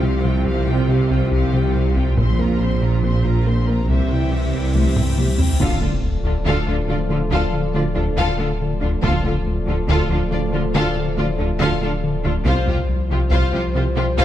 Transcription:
Already playing: C2 C3 F3 C4 G4 C5
0.03 C3 G3 G4 C5 F5
0.24 C3 G3 F4 G4 G5
0.46 C2 C3 G4 C5 F5
0.67 C3 F4 G4 G5
0.88 C3 G3 G4 C5 F5
1.10 C2 C4 F4 G4 G5
1.32 C2 C3 G4 C5 F5
1.53 C3 G3 F4 G4 G5
1.74 C3 G4 C5 F5
1.95 C2 C4 F4 G4 G5
2.17 A#1 A#2 A#3 C4 F4 C5 C6, taiko, cymbal swell
2.38 A#3 F4 A#4 A#5, taiko low
2.60 A#2 C4 C5 C6
2.82 A#2 F4 A#4 A#5
3.03 A#2 A#3 C4 C5 C6
3.24 A#2 F4 A#4 A#5
3.46 A#3 C4 A#4 C5 C6
3.68 A#3 F4 A#4 A#5
3.88 C2 C3 E3 G3 C4 E4 G4 C5 E5
4.11 C3 E4 E5 G5
4.31 C3 G3 G4 C5 E5
4.53 C2 C4 E4 E5 G5
4.74 C2 C3 G4 C5 E5, taiko high
4.96 C3 G3 E4 E5 G5, taiko low-mid
5.17 C3 G4 C5 E5, taiko high
5.38 C2 C4 E4 E5 G5, taiko low
5.59 D1 D2 D3 F3 A3 F4 A4 D5 F5, taiko, impact
5.81 D3 A3 D4 F4 A4, taiko low
6.03 D2
6.24 D2 D3 F3 D4 F4 A4
6.45 D2 D3 F4 A4 F5
6.67 D2 D3 F3 D4 F4 A4
6.88 D2 D3 A3 F4 D5
7.09 D3 A3 D4 F4 A4
7.30 D2 D3 F4 A4 F5
7.53 D3
7.74 D2 D3 A3 F4 D5
7.94 D2 D3 D4 F4 A4
8.16 D2 D3 F4 A4 F5
8.38 D3 A3 D4 F4 A4
8.62 D3
8.80 D2 D3 D4 F4 A4
9.02 D1 D2 D3 F3 A3 F4 A4 D5 F5, taiko
9.24 D3 A3 D4 F4 A4, taiko low
9.46 D2
9.66 D2 D3 F3 D4 F4 A4
9.88 D2 D3 F4 A4 F5
10.09 D2 D3 F3 D4 F4 A4
10.31 D2 D3 A3 F4 D5
10.52 D3 A3 D4 F4 A4
10.74 D2 D3 F4 A4 F5
10.97 D3
11.17 D2 D3 A3 F4 D5
11.38 D2 D3 D4 F4 A4
11.59 D2 D3 F4 A4 F5
11.81 D3 A3 D4 F4 A4
12.04 D3
12.24 D2 D3 D4 F4 A4
12.43 C2 C3 F3 G3 F4 C5 F5, taiko
12.67 C3 G3 F4 G4, taiko low
12.89 C2
13.11 C2 C3 F3 F4 G4
13.31 C2 C3 F4 C5 F5
13.53 C2 C3 F3 F4 G4
13.75 C2 C3 G3 F4 G4 C5
13.96 C3 G3 F4 G4
14.18 C2 C3 F4 C5 F5

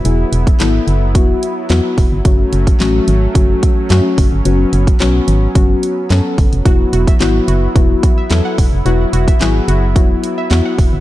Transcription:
Already playing: F#3 B3 E4
0.05 E1 F#3 B3 E4 G#4, closed hi-hat
0.32 E1, closed hi-hat
0.47 kick, closed hi-hat
0.60 G#1 F#3 B3 E4 A4, snare, clap, closed hi-hat
0.87 F#1, closed hi-hat
1.15 E1 F#3 B3 E4 F#4, kick, closed hi-hat
1.43 closed hi-hat
1.70 E2 F#3 B3 E4 F#4, snare, clap, closed hi-hat
1.98 E1, kick, open hi-hat
2.12 G1
2.25 F#1 F#3 A3 C#4 F#4, kick, closed hi-hat
2.53 F#1, closed hi-hat
2.67 kick, closed hi-hat
2.80 A1 F#3 A3 C#4 F#4, snare, clap, closed hi-hat
3.08 G#1, closed hi-hat
3.35 F#1 F#3 A3 C#4 F#4, kick, closed hi-hat
3.63 kick, closed hi-hat
3.90 F#2 F#3 A3 C#4 F#4, snare, clap, closed hi-hat
4.18 F#1, kick, open hi-hat
4.32 G1
4.45 F#1 F#3 B3 C#4 F#4, closed hi-hat
4.73 F#1, closed hi-hat
4.87 kick, closed hi-hat
5.00 B1 F#3 B3 C#4 F#4, snare, clap, closed hi-hat
5.28 G#1, closed hi-hat
5.55 F#1 F#3 B3 C#4 F#4, kick, closed hi-hat
5.83 closed hi-hat
6.10 F#2 F#3 B3 C#4 A4, snare, clap, closed hi-hat
6.38 F#1, kick, open hi-hat
6.53 F1, closed hi-hat
6.65 E1 F#3 B3 E4 F#4, kick, closed hi-hat
6.93 E1 F#4, closed hi-hat
7.07 E5, kick, closed hi-hat
7.20 G#1 F#3 B3 E4 F#4, snare, clap, closed hi-hat
7.48 F#1 F#4, closed hi-hat
7.75 E1 F#3 B3 E4 F#4, kick, closed hi-hat
8.03 kick, closed hi-hat
8.18 E5
8.30 E2 F#3 B3 E4 A4, snare, clap, closed hi-hat
8.45 F#5
8.58 E1, kick, open hi-hat
8.73 F1
8.85 E1 F#3 B3 E4 F#4, closed hi-hat
9.13 E1 F#4, closed hi-hat
9.28 E5, kick, closed hi-hat
9.41 G#1 F#3 B3 E4 F#4 G#4, snare, clap, closed hi-hat
9.68 F#1 F#4, closed hi-hat
9.96 E1 F#3 B3 E4 F#4, kick, closed hi-hat
10.24 closed hi-hat
10.38 E5
10.51 E2 F#3 B3 E4 F#4, snare, clap, closed hi-hat
10.65 F#5
10.78 E1, kick, open hi-hat
10.93 G1

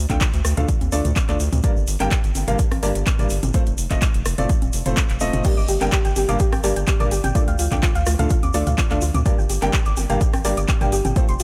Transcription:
0.09 D2 D3 A3 D4 F4 A4 G5, kick, clap, closed hi-hat, high conga, shaker
0.21 kick, clap, closed hi-hat, shaker
0.33 D2, closed hi-hat, shaker
0.45 D2, cross-stick, open hi-hat, shaker
0.57 D2 D3 A3 D4 F4 A4 F5, closed hi-hat, mid tom, shaker
0.68 kick, closed hi-hat, shaker
0.81 D#2, closed hi-hat, high conga, shaker
0.92 D2 D3 A3 D4 F4 A4 D5, open hi-hat, shaker
1.05 D2, closed hi-hat, mid tom, shaker
1.16 kick, clap, closed hi-hat, high conga, shaker
1.28 D2 D3 A3 D4 F4 A4 D5, clap, closed hi-hat, shaker
1.40 D2, open hi-hat, shaker
1.52 D2, closed hi-hat, mid tom, high conga, shaker
1.63 G2 A#3 D4 G4 A#4 D5, kick, closed hi-hat, shaker
1.76 G1, shaker
1.87 G1, open hi-hat, shaker
2.00 G1 G2 A#3 D4 G4 A#4 G5, clap, closed hi-hat, high conga, shaker
2.11 kick, clap, closed hi-hat, shaker
2.24 G1, closed hi-hat, shaker
2.35 G1, open hi-hat, high conga, shaker
2.47 G1 G2 A#3 D4 G4 A#4 F5, closed hi-hat, mid tom, shaker
2.59 kick, closed hi-hat, shaker
2.71 A1, cross-stick, open hi-hat, high conga, shaker
2.83 G1 G2 A#3 D4 G4 A#4 D5, open hi-hat, shaker
2.95 G1, closed hi-hat, shaker
3.07 kick, clap, closed hi-hat, high conga, shaker
3.19 G1 G2 A#3 D4 G4 A#4 D5, closed hi-hat, mid tom, shaker
3.29 G1, open hi-hat, shaker
3.43 G1, closed hi-hat, mid tom, high conga, shaker
3.53 A3 C4 F4 A4 C5, kick, closed hi-hat, shaker
3.66 F1, closed hi-hat, shaker
3.78 F1, open hi-hat, shaker
3.91 F1 A3 C4 F4 A4 D#5, kick, clap, closed hi-hat, high conga, shaker
4.02 kick, clap, closed hi-hat, shaker
4.14 F1, closed hi-hat, shaker
4.26 F1, cross-stick, open hi-hat, shaker
4.38 F1 A3 C4 F4 A4 D5, closed hi-hat, mid tom, shaker
4.49 kick, closed hi-hat, shaker
4.62 D#1, closed hi-hat, high conga, shaker
4.73 F1, open hi-hat, shaker
4.86 F1 A3 C4 F4 A4 C5, closed hi-hat, mid tom, shaker
4.97 kick, clap, closed hi-hat, high conga, shaker
5.10 F1, clap, closed hi-hat, shaker
5.20 D#1 A3 C4 F4 A4 D#5, open hi-hat, shaker
5.33 F1, closed hi-hat, mid tom, high conga, shaker
5.44 G2 A#3 D4 G4 A#4 D5, kick, closed hi-hat, crash, shaker
5.57 G1 D6, shaker
5.68 G1 G4, open hi-hat, shaker
5.81 G1 G2 A#3 D4 G4 A#4 G5, clap, closed hi-hat, high conga, shaker
5.92 G4, kick, clap, closed hi-hat, shaker
6.05 G1 G5, closed hi-hat, shaker
6.16 G1 G4, open hi-hat, high conga, shaker
6.28 G1 G2 A#3 D4 G4 A#4 F5 D6, closed hi-hat, mid tom, shaker
6.39 G4, kick, closed hi-hat, shaker
6.52 A1 G5, cross-stick, open hi-hat, high conga, shaker
6.64 G1 G2 A#3 D4 G4 A#4 D5, open hi-hat, shaker
6.76 G1 G5, closed hi-hat, shaker
6.87 G4, kick, clap, closed hi-hat, high conga, shaker
7.00 G1 G2 A#3 D4 G4 A#4 D5 D6, closed hi-hat, mid tom, shaker
7.11 G1 G4, open hi-hat, shaker
7.24 G1 G5, closed hi-hat, mid tom, high conga, shaker
7.35 D3 A3 D4 F4 A4 D5, kick, closed hi-hat, shaker
7.48 D2 F5, closed hi-hat, shaker
7.59 D2 F4, open hi-hat, shaker
7.71 D2 D3 A3 D4 F4 A4 G5 D6, kick, clap, closed hi-hat, high conga, shaker
7.83 F4, kick, clap, closed hi-hat, shaker
7.95 D2 F5, closed hi-hat, shaker
8.06 D2 F4, cross-stick, open hi-hat, shaker
8.19 D2 D3 A3 D4 F4 A4 F5, closed hi-hat, mid tom, shaker
8.30 F4, kick, closed hi-hat, shaker
8.43 D#2 D6, closed hi-hat, high conga, shaker
8.54 D2 D3 A3 D4 F4 A4 D5, open hi-hat, shaker
8.67 D2 F5, closed hi-hat, mid tom, shaker
8.78 F4, kick, clap, closed hi-hat, high conga, shaker
8.91 D2 D3 A3 D4 F4 A4 D5 F5, clap, closed hi-hat, shaker
9.01 D2 F4, open hi-hat, shaker
9.14 D2 D6, closed hi-hat, mid tom, high conga, shaker
9.26 G2 A#3 D4 G4 A#4 D5, kick, closed hi-hat, shaker
9.38 G1 G5, shaker
9.49 G1 G4, open hi-hat, shaker
9.62 G1 G2 A#3 D4 G4 A#4 G5, clap, closed hi-hat, high conga, shaker
9.73 G4, kick, clap, closed hi-hat, shaker
9.85 G1 D6, closed hi-hat, shaker
9.97 G1 G4, open hi-hat, high conga, shaker
10.10 G1 G2 A#3 D4 G4 A#4 F5 G5, closed hi-hat, mid tom, shaker
10.21 G4, kick, closed hi-hat, shaker
10.33 A1 G5, cross-stick, open hi-hat, high conga, shaker
10.45 G1 G2 A#3 D4 G4 A#4 D5, open hi-hat, shaker
10.57 G1 D6, closed hi-hat, shaker
10.68 G4, kick, clap, closed hi-hat, high conga, shaker
10.81 G1 G2 A#3 D4 G4 A#4 D5 G5, closed hi-hat, mid tom, shaker
10.92 G1 G4, open hi-hat, shaker
11.05 G1 G5, closed hi-hat, mid tom, high conga, shaker
11.16 A3 C4 F4 A4 C5, kick, closed hi-hat, shaker
11.28 F1 C6, closed hi-hat, shaker
11.40 F1 F4, open hi-hat, shaker

